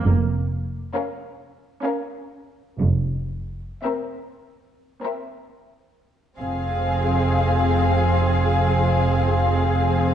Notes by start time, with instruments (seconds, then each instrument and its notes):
0.05 double bass section F1, cello section F2
0.94 viola section C#4, violin section A#4 F5
1.84 viola section C#4, violin section A#4 F5
2.80 double bass section F1, cello section F2
3.84 viola section C4, violin section A#4 E5
5.04 viola section C4, violin section A#4 E5
6.39 double bass section F1, cello section F2, viola section C4, violin section G#4 F5